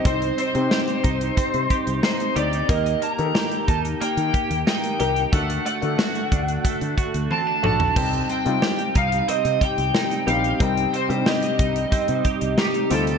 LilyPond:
<<
  \new Staff \with { instrumentName = "Lead electric guitar" } { \time 4/4 \key c \dorian \tempo 4 = 91 c''8 c''2~ c''8 c''8 d''8 | ees''8 bes''4 a''8 g''4 g''4 | fis''8 fis''2~ fis''8 a''8 a''8~ | a''8 g''4 f''8 ees''8 g''4 f''8 |
g''8 c''8 ees''2 g'8 a'8 | }
  \new Staff \with { instrumentName = "Clean electric guitar" } { \time 4/4 \key c \dorian <c' ees' g'>8 c'8 g'8 ees'8 c'8 g'8 ees'8 g'8 | bes8 bes8 g'8 ees'8 bes8 g'8 ees'8 g'8 | a8 a8 fis'8 d'8 a8 fis'8 c'16 d'16 fis'8 | c'8 c'8 g'8 ees'8 c'8 g'8 ees'8 g'8 |
c'8 c'8 g'8 ees'8 c'8 g'8 ees'8 g'8 | }
  \new Staff \with { instrumentName = "Grand piano" } { \time 4/4 \key c \dorian <c' ees' g' c''>8. <c' ees' g' c''>4.~ <c' ees' g' c''>16 r4 <c' ees' g' d''>8 | <bes ees' g' bes'>8. <bes ees' g' a' bes'>4.~ <bes ees' g' a' bes'>16 r4 <bes ees' g' bes'>8 | <a d' fis' a'>8. <a d' fis' a'>4.~ <a d' fis' a'>16 r4 <a d' fis' a'>8 | <g c' ees' g'>8. <g c' ees' f'>4.~ <g c' ees' f'>16 r4 <g c' ees' g'>8 |
<g c' ees' bes'>8. <g c' d' ees' g'>4.~ <g c' d' ees' g'>16 r4 <g c' ees' f'>8 | }
  \new Staff \with { instrumentName = "String machine" } { \clef bass \time 4/4 \key c \dorian << { <c ees'>1 | <ees g'>1 | <d fis'>1 | <c ees'>1~ |
<c ees'>1 | } \\ { g1 | bes1 | a1 | g1 |
g1 | } >> }
  \new Staff \with { instrumentName = "Fretless electric bass" } { \clef bass \time 4/4 \key c \dorian c,8 r16 c16 r8 c,8 r16 c16 r16 c,16 r8 d,8 | ees,8 r16 ees16 r8 ees,8 r16 ees16 r16 ees,16 r8 c,8 | d,8 r16 d16 r8 d,8 r16 d16 r16 d,16 r8 bes,,8 | c,8 r16 c16 r8 c,8 r16 c16 r16 c,16 r8 bes,,8 |
c,8 r16 c16 r8 c,8 r16 c16 r16 c,16 r8 d,8 | }
  \new DrumStaff \with { instrumentName = "Drums" } \drummode { \time 4/4 <hh bd>16 hh16 hh16 hh16 sn16 hh16 <hh bd>16 hh16 <hh bd>16 hh16 <hh bd>16 hh16 sn16 hh16 hh16 hh16 | <hh bd>16 hh16 hh16 hh16 sn16 hh16 <hh bd>16 hh16 hh16 hh16 <hh bd>16 hh16 sn16 hh16 hh16 hh16 | <hh bd>16 hh16 hh16 hh16 sn16 hh16 <hh bd>16 hh16 <hh bd>16 hh16 <hh bd>16 hh16 tommh8 toml16 tomfh16 | <cymc bd>16 hh16 hh16 hh16 sn16 hh16 <hh bd>16 hh16 hh16 hh16 <hh bd>16 hh16 sn16 hh16 hh16 hh16 |
<hh bd>16 hh16 hh16 hh16 sn16 hh16 <hh bd>16 hh16 <hh bd>16 hh16 <hh bd>16 hh16 sn16 hh16 hh16 hh16 | }
>>